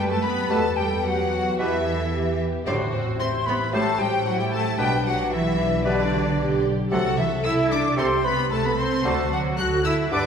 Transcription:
Already playing: F#2 G4 B4
0.08 A3 A4 A5
0.22 B3 B4 B5
0.50 E2 B2 A3 G4 A4 B4 A5
0.77 G3 G4 G5
1.04 F#3 F#4 G4 F#5
1.31 F#4
1.59 B2 E3 E4 G4 B4 E5
1.85 A4
2.12 G4
2.66 A1 A2 D3 D4 F#4 G4 C5 D5
2.93 C3 C4 C5
3.19 C4 E4 C5 C6
3.46 B3 B4 B5
3.72 A2 A3 F#4 G4 A4 C5 A5
3.98 G3 G4 G5
4.25 F#3 E4 F#4 F#5
4.38 G3 G4 G5
4.51 A3 A4 A5
4.78 B1 B2 G3 D4 G4 B4 G5
5.05 F#3 F#4 F#5
5.31 E3 E4 E5
5.59 D4
5.85 B2 D3 D4 G4 B4 D5
6.12 F#4
6.39 G4
6.91 C2 C3 F#3 F#4 G4 A4 F#5
7.17 E3 E4 E5
7.43 C2 E4 E5 E6
7.70 D4 D5 D6
7.96 C2 C3 C4 G4 A4 C5 C6
8.24 B3 B4 B5
8.51 C2 A3 A4 A5
8.64 B3 B4 B5
8.78 C4 C5 C6
9.05 D2 D3 A3 F#4 A4 C5 A5
9.31 F#3 F#4 F#5
9.58 D2 F#4 A4 F#5 F#6
9.84 E4 E5 E6
10.11 G2 D3 D4 G4 B4 D5 D6

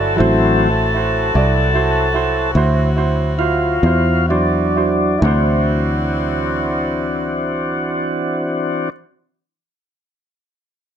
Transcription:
Already playing: G1 F#3 C4 E4 F#4 A4 D5
0.16 E3 F#3 C4 E4 F#4 A4 C5
0.20 A1
0.56 E4 F#4 C5
0.94 E4 F#4 C5
1.34 C2 E4 F#4 D5
1.73 E4 F#4 C5
2.14 E4 F#4 C5
2.55 D2 E4 F#4 C5
2.96 E4 F#4 C5
3.38 E4 F4 F#4 C5
3.83 E2 E4 F#4 C5
4.28 F#3 D4 E4 F#4 C5
4.75 E4 F#4 C5
5.18 F#3 C4 E4 F#4
5.22 D2 E3 C4 D4 F#4
5.27 C5

